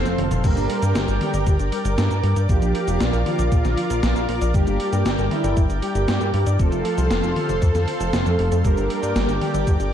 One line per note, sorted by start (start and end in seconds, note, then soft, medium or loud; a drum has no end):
0.00 0.34 C4 loud
0.00 0.42 A4 medium
0.00 0.42 C5 medium
0.00 0.42 F5 medium
0.00 0.42 C6 loud
0.06 0.17 F1 medium
0.06 0.41 F3 medium
0.06 0.41 A3 medium
0.06 0.41 C4 medium
0.06 0.16 A4 medium
0.06 0.41 A4 medium
0.06 snare medium
0.06 closed hi-hat soft
0.06 cabasa soft
0.18 0.30 F1 loud
0.18 0.25 F3 medium
0.18 open hi-hat medium
0.18 mid tom medium
0.31 0.43 F1 medium
0.31 0.42 C5 loud
0.31 closed hi-hat medium
0.31 mid tom medium
0.31 cabasa medium
0.44 0.55 G1 loud
0.44 0.54 G3 medium
0.44 1.18 G3 loud
0.44 1.18 A#3 medium
0.44 1.18 D4 medium
0.44 1.18 G4 loud
0.44 2.47 A#4 medium
0.44 1.11 A#4 loud
0.44 6.55 D5 medium
0.44 2.47 G5 medium
0.44 6.55 D6 medium
0.44 kick loud
0.44 closed hi-hat medium
0.44 crash medium
0.44 cabasa soft
0.57 0.68 G1 medium
0.57 0.67 D4 medium
0.57 closed hi-hat soft
0.57 cabasa soft
0.70 0.82 G3 loud
0.70 open hi-hat medium
0.82 0.94 G2 medium
0.82 0.93 G4 loud
0.82 closed hi-hat medium
0.82 cabasa medium
0.95 1.07 G1 loud
0.95 1.06 G3 medium
0.95 snare loud
0.95 closed hi-hat medium
0.95 cabasa medium
1.08 1.19 G1 medium
1.08 1.19 A#4 medium
1.08 closed hi-hat soft
1.08 cabasa soft
1.21 1.35 G3 medium
1.21 1.27 G3 medium
1.21 1.35 A#3 medium
1.21 1.35 D4 medium
1.21 1.53 G4 loud
1.21 1.35 A4 medium
1.21 snare soft
1.21 open hi-hat medium
1.21 mid tom medium
1.34 1.45 G1 medium
1.34 1.44 D5 loud
1.34 closed hi-hat medium
1.34 cabasa medium
1.47 1.58 G1 loud
1.47 1.57 G3 medium
1.47 kick loud
1.47 closed hi-hat medium
1.47 cabasa soft
1.59 1.71 G1 medium
1.59 1.70 D4 medium
1.59 closed hi-hat soft
1.59 cabasa soft
1.72 1.84 G3 loud
1.72 2.39 A#4 loud
1.72 open hi-hat medium
1.85 1.96 G1 medium
1.85 1.95 G4 loud
1.85 closed hi-hat medium
1.85 cabasa medium
1.98 2.09 G2 loud
1.98 2.08 G3 medium
1.98 snare loud
1.98 closed hi-hat medium
1.98 cabasa medium
2.11 2.22 G2 medium
2.11 2.21 A#4 medium
2.11 closed hi-hat soft
2.11 cabasa soft
2.24 2.35 G2 loud
2.24 2.30 G3 medium
2.24 open hi-hat medium
2.36 2.48 G2 medium
2.36 2.47 D5 loud
2.36 closed hi-hat medium
2.36 cabasa medium
2.49 2.60 A#1 loud
2.49 3.23 F3 loud
2.49 2.60 F3 medium
2.49 3.23 A#3 medium
2.49 3.23 D4 medium
2.49 3.23 F4 loud
2.49 3.16 G4 loud
2.49 6.55 A#4 medium
2.49 4.52 F5 medium
2.49 kick loud
2.49 closed hi-hat medium
2.49 cabasa soft
2.62 2.73 A#1 medium
2.62 2.72 D4 medium
2.62 closed hi-hat soft
2.62 cabasa soft
2.75 2.87 F3 loud
2.75 open hi-hat medium
2.88 2.99 F1 medium
2.88 2.98 F4 loud
2.88 closed hi-hat medium
2.88 cabasa medium
3.00 3.12 A#1 loud
3.00 3.11 F3 medium
3.00 snare loud
3.00 closed hi-hat medium
3.00 cabasa soft
3.13 3.25 A#1 medium
3.13 3.24 A#4 medium
3.13 closed hi-hat soft
3.13 cabasa soft
3.26 3.32 F3 medium
3.26 3.40 F3 medium
3.26 3.40 A#3 medium
3.26 3.40 D4 medium
3.26 4.44 F4 loud
3.26 3.40 G4 loud
3.26 open hi-hat medium
3.26 mid tom medium
3.39 3.50 A#1 medium
3.39 3.49 D5 loud
3.39 closed hi-hat medium
3.39 cabasa medium
3.52 3.63 A#1 loud
3.52 3.62 F3 medium
3.52 kick loud
3.52 closed hi-hat medium
3.52 cabasa soft
3.65 3.76 A#1 medium
3.65 3.75 D4 medium
3.65 snare soft
3.65 closed hi-hat soft
3.65 mid tom medium
3.65 cabasa soft
3.77 3.90 F3 loud
3.77 open hi-hat medium
3.90 4.01 A#1 medium
3.90 4.00 F4 loud
3.90 closed hi-hat medium
3.90 cabasa medium
4.03 4.14 A#1 loud
4.03 4.13 F3 medium
4.03 snare loud
4.03 closed hi-hat medium
4.03 cabasa soft
4.16 4.27 A#1 medium
4.16 4.26 A#4 medium
4.16 closed hi-hat soft
4.16 cabasa soft
4.29 4.40 A#1 loud
4.29 4.35 F3 medium
4.29 open hi-hat medium
4.41 4.53 A#1 medium
4.41 4.52 D5 loud
4.41 closed hi-hat medium
4.41 cabasa medium
4.54 4.66 G1 loud
4.54 4.65 G3 medium
4.54 5.28 G3 loud
4.54 5.28 A#3 medium
4.54 5.28 D4 medium
4.54 5.28 G4 loud
4.54 5.21 G4 loud
4.54 6.57 G5 medium
4.54 kick loud
4.54 closed hi-hat medium
4.54 cabasa soft
4.67 4.78 G1 medium
4.67 4.77 D4 medium
4.67 closed hi-hat soft
4.67 cabasa soft
4.80 4.92 G3 loud
4.80 open hi-hat medium
4.93 5.04 G2 medium
4.93 5.03 G4 loud
4.93 closed hi-hat medium
4.93 cabasa medium
5.05 5.17 G1 loud
5.05 5.16 G3 medium
5.05 snare loud
5.05 closed hi-hat medium
5.05 cabasa soft
5.18 5.30 G1 medium
5.18 5.29 A#4 medium
5.18 closed hi-hat soft
5.18 cabasa soft
5.31 5.45 G3 medium
5.31 5.37 G3 medium
5.31 5.45 A#3 medium
5.31 5.45 D4 medium
5.31 5.63 E4 loud
5.31 5.45 A4 loud
5.31 snare soft
5.31 open hi-hat medium
5.31 mid tom medium
5.44 5.55 G1 medium
5.44 5.54 D5 loud
5.44 closed hi-hat medium
5.44 cabasa medium
5.57 5.68 G1 loud
5.57 5.67 G3 medium
5.57 kick loud
5.57 closed hi-hat medium
5.57 cabasa soft
5.70 5.81 G1 medium
5.70 5.80 D4 medium
5.70 closed hi-hat soft
5.70 cabasa soft
5.82 5.95 G3 loud
5.82 6.49 G4 loud
5.82 open hi-hat medium
5.95 6.07 G1 medium
5.95 6.06 G4 loud
5.95 closed hi-hat medium
5.95 cabasa medium
6.08 6.19 G2 loud
6.08 6.18 G3 medium
6.08 snare loud
6.08 closed hi-hat medium
6.08 cabasa soft
6.21 6.32 G2 medium
6.21 6.31 A#4 medium
6.21 closed hi-hat soft
6.21 cabasa soft
6.34 6.45 G2 medium
6.34 6.40 G3 medium
6.34 open hi-hat medium
6.47 6.58 G2 medium
6.47 6.57 D5 loud
6.47 closed hi-hat medium
6.47 cabasa medium
6.59 6.71 F1 loud
6.59 7.33 F3 loud
6.59 6.70 F3 medium
6.59 7.33 A3 medium
6.59 7.33 C4 medium
6.59 7.33 F4 loud
6.59 8.63 A4 medium
6.59 7.26 A4 loud
6.59 8.63 C5 medium
6.59 8.63 F5 medium
6.59 8.63 C6 medium
6.59 kick loud
6.59 closed hi-hat medium
6.59 cabasa soft
6.72 6.83 F1 medium
6.72 6.83 C4 medium
6.72 closed hi-hat soft
6.72 cabasa soft
6.85 6.97 F3 loud
6.85 open hi-hat medium
6.98 7.09 C2 medium
6.98 7.08 F4 loud
6.98 closed hi-hat medium
6.98 cabasa medium
7.11 7.22 F1 loud
7.11 7.21 F3 medium
7.11 snare loud
7.11 closed hi-hat medium
7.11 cabasa soft
7.23 7.35 F1 medium
7.23 7.34 A4 medium
7.23 closed hi-hat soft
7.23 cabasa soft
7.36 7.50 F3 medium
7.36 7.43 F3 medium
7.36 7.50 A3 medium
7.36 7.50 C4 medium
7.36 7.50 G4 loud
7.36 8.54 A4 loud
7.36 open hi-hat medium
7.36 mid tom loud
7.49 7.60 F1 medium
7.49 7.59 C5 loud
7.49 closed hi-hat medium
7.49 cabasa medium
7.62 7.73 F2 loud
7.62 7.72 F3 medium
7.62 kick loud
7.62 closed hi-hat medium
7.62 cabasa soft
7.75 7.86 F2 medium
7.75 7.85 C4 medium
7.75 snare soft
7.75 closed hi-hat soft
7.75 mid tom medium
7.75 cabasa soft
7.88 8.00 F4 medium
7.88 open hi-hat medium
8.00 8.12 F1 medium
8.00 8.13 C4 medium
8.00 closed hi-hat medium
8.00 cabasa medium
8.13 8.25 F1 loud
8.13 8.24 A4 medium
8.13 snare loud
8.13 closed hi-hat medium
8.13 cabasa soft
8.26 8.37 F2 medium
8.26 8.62 F3 medium
8.26 8.62 A3 medium
8.26 8.62 C4 medium
8.26 8.36 A4 loud
8.26 8.62 A4 loud
8.26 closed hi-hat soft
8.26 cabasa soft
8.39 8.50 F1 loud
8.39 8.45 C4 medium
8.39 open hi-hat medium
8.52 8.63 F2 medium
8.52 8.62 F3 medium
8.52 closed hi-hat medium
8.52 cabasa medium
8.65 8.76 G1 loud
8.65 8.75 G3 medium
8.65 9.38 G3 loud
8.65 9.38 A#3 medium
8.65 9.38 D4 medium
8.65 9.38 G4 loud
8.65 9.31 A#4 loud
8.65 9.93 A#4 medium
8.65 9.93 D5 medium
8.65 9.93 G5 medium
8.65 9.93 D6 medium
8.65 kick loud
8.65 closed hi-hat medium
8.65 cabasa soft
8.77 8.89 G1 medium
8.77 8.88 D4 medium
8.77 closed hi-hat soft
8.77 cabasa soft
8.90 9.02 G3 loud
8.90 open hi-hat medium
9.03 9.14 G2 medium
9.03 9.13 G4 loud
9.03 closed hi-hat medium
9.03 cabasa medium
9.16 9.27 G1 loud
9.16 9.26 G3 medium
9.16 snare loud
9.16 closed hi-hat medium
9.16 cabasa soft
9.29 9.40 G1 medium
9.29 9.39 A#4 medium
9.29 closed hi-hat soft
9.29 cabasa soft
9.41 9.48 G3 medium
9.41 9.55 G3 medium
9.41 9.55 A#3 medium
9.41 9.55 D4 medium
9.41 9.73 G4 medium
9.41 9.55 A4 loud
9.41 snare soft
9.41 open hi-hat medium
9.41 mid tom loud
9.54 9.66 G1 medium
9.54 9.65 D5 loud
9.54 closed hi-hat medium
9.54 cabasa medium
9.67 9.78 G1 loud
9.67 9.77 G3 medium
9.67 kick loud
9.67 closed hi-hat soft
9.67 cabasa soft
9.80 9.91 G1 medium
9.80 9.90 D4 medium
9.80 closed hi-hat soft
9.80 cabasa soft